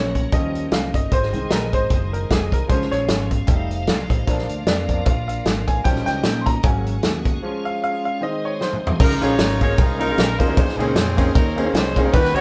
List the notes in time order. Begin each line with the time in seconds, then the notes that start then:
Already playing: A#1 F#3 A#3 C#4 F#4 A#4 C#5
0.15 kick, closed hi-hat
0.31 D#2 D#3 F3 G3 A#3 C#4 D#4 G4 D#5, kick, closed hi-hat
0.55 closed hi-hat
0.71 C2 F5, snare, closed hi-hat
0.94 G1 D#5, kick, closed hi-hat
1.10 G#1 D#3 G#3 C4 G#4 C5 D#5, kick, closed hi-hat
1.23 snare
1.33 C2 D#3 G#3 C4, closed hi-hat
1.51 A#1 A#4, snare, closed hi-hat
1.73 G#1 C5, kick, closed hi-hat
1.90 F#1, kick, closed hi-hat
2.13 A#4, closed hi-hat
2.30 F1 G#4, kick, snare, closed hi-hat
2.52 C2 A#4, kick, closed hi-hat
2.68 C#2 F3 G#3 C#4 F4 F#4 C5 C#5 F5, kick, closed hi-hat
2.75 G#4
2.81 snare
2.91 A#1 C#5, snare, closed hi-hat
3.08 G#1, snare, closed hi-hat
3.31 kick, closed hi-hat
3.47 F1 F3 G3 A3 D#4 G4 A4 D#5, kick, closed hi-hat
3.70 C5 F5, closed hi-hat
3.87 C2 D5 G5, snare, closed hi-hat
4.10 A1 G4 C5, kick, closed hi-hat
4.27 A#1 F3 A#3 D4 F4 A#4 D5, kick, closed hi-hat
4.38 snare
4.49 D2, closed hi-hat
4.67 F2 D5, snare, closed hi-hat
4.89 F3 A#3 D4, kick, closed hi-hat
5.05 A#1 F5, kick, closed hi-hat
5.28 F5, closed hi-hat
5.45 G#1, snare, closed hi-hat
5.67 A1 G#5, kick, closed hi-hat
5.84 A#1 F3 G3 C#4 D#4 G4 A#4 C#5 D#5 G5, kick, closed hi-hat
5.95 snare
6.06 C#2 G5, snare, closed hi-hat
6.24 A#2, snare, closed hi-hat
6.41 C6
6.46 A#5, kick, closed hi-hat
6.63 G#1 F#3 G#3 A#3 C#4 F#4 G#4 A#4 F#5 G#5, kick, closed hi-hat
6.87 closed hi-hat
7.03 D#2, snare, closed hi-hat
7.25 kick, closed hi-hat
7.42 F3 G#3 C#4 F4 C#5 F5
7.65 F5
7.84 F5
8.05 F5
8.21 D#3 G#3 C4 D#4 C5 D#5
8.45 C#5
8.61 C5, snare
8.73 mid tom
8.87 floor tom
8.99 C#2 C#3 G#3 C#4 D#4 E4 F4 A#4, kick, crash
9.04 F4
9.11 snare
9.21 A#1 A#3 C#4 D#4 F4 G#4 A#4 C#5, snare, ride
9.39 G#1, snare, ride
9.60 A#3 C#4 D#4 F4 G#4 C#5, kick, ride
9.78 C2 D#4 F4 G#4, kick, ride
9.99 A#3 C#4 D#4 F4 A#4, ride
10.08 A#3 C#4 D#4 F4 G#4
10.18 A#1, snare, ride
10.38 D#2 A#3 C#4 D#4 F4 G#4 A#4 C5, kick, ride
10.48 A#3 C#4 D#4 F4 A#4
10.55 A#1 A#2 A#3 D#4 F4 G#4 B4, kick, ride
10.60 C5
10.69 snare
10.78 C#2 A#3 C4 C#4 D#4 G#4, ride
10.95 F2, snare, ride
11.17 A#3 C4 C#4 D#4 G#4, kick, ride
11.35 D#2 C#4 D#4 A#4, kick, ride
11.56 A#3 C4 C#4 D#4 G#4, ride
11.64 A#3 C4 C#4 D#4 G#4
11.73 C2 D#4 G#4 C5, snare, ride
11.96 A#3 C4 C#4 D#4 G#4, kick, ride
12.04 A#3 C4 C#4 D#4 A#4
12.12 D#2 D#3 G3 C#4 D#4 F#4 G4 B4 F#5, kick, ride
12.25 snare
12.34 C#2 G3 B3 C#4 D#4 F#4 G4 C#5, ride